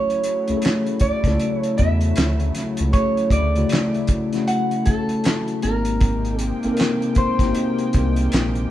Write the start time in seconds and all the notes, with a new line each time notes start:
Already playing: C#3 F#3 A3 C#4 E4 F#4 C#5
0.10 closed hi-hat
0.24 closed hi-hat
0.48 C#2 A3 C#4 E4 G#4, closed hi-hat
0.57 A4
0.62 clap, closed hi-hat
0.66 snare
0.87 closed hi-hat
1.00 C#2 D5, kick, closed hi-hat
1.24 C#2 C#3 A3 E4 A4, kick, snare, closed hi-hat
1.40 closed hi-hat
1.56 C#5
1.63 closed hi-hat
1.78 E2 E5, kick, closed hi-hat
2.01 closed hi-hat
2.16 D2, snare, clap, closed hi-hat
2.40 closed hi-hat
2.55 snare, closed hi-hat
2.77 C#2, closed hi-hat
2.93 A3 C#4 E4 G#4 C#5, kick, closed hi-hat
3.17 closed hi-hat
3.30 D2 D5, kick, closed hi-hat
3.56 C#3 A3 E4 F#4, closed hi-hat
3.69 clap, closed hi-hat
3.73 snare
3.94 closed hi-hat
4.07 kick, closed hi-hat
4.32 A3 C#4 E4 F#4, snare, closed hi-hat
4.48 F#5, closed hi-hat
4.71 closed hi-hat
4.86 A4, kick, closed hi-hat
5.09 closed hi-hat
5.24 snare, clap, closed hi-hat
5.48 closed hi-hat
5.62 G#1 C3 G#3 A#3 C4 D#4 F#4 A#4 G5, closed hi-hat
5.71 G4
5.85 closed hi-hat
6.01 kick, closed hi-hat
6.25 closed hi-hat
6.39 G#4, closed hi-hat
6.63 G#1 A#3 C4 D#4 A4, closed hi-hat
6.73 A#4, closed hi-hat
6.81 snare, clap
7.02 closed hi-hat
7.15 G#1 C5, kick, closed hi-hat
7.39 G#1 A#3 C4 D#4 F#4, kick, snare, closed hi-hat
7.49 G4
7.55 closed hi-hat
7.78 closed hi-hat
7.93 C2, kick, closed hi-hat
8.16 closed hi-hat
8.32 A#1, snare, clap, closed hi-hat
8.55 closed hi-hat